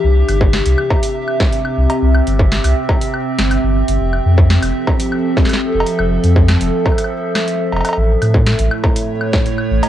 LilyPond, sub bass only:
\new Staff \with { instrumentName = "Sub bass" } { \clef bass \time 4/4 \key f \lydian \tempo 4 = 121 c,8 g,,8. c,16 r2 c,16 r16 | c,8 g,,8. c,16 r4 r16 g,,8 g,,8 g,,16 | f,,8 f,8. f,,16 r2 f,,16 r16 | f,,8 f,8. f,,16 r2 f,,16 r16 |
a,,8 a,8. a,,16 r2 a,,16 r16 | }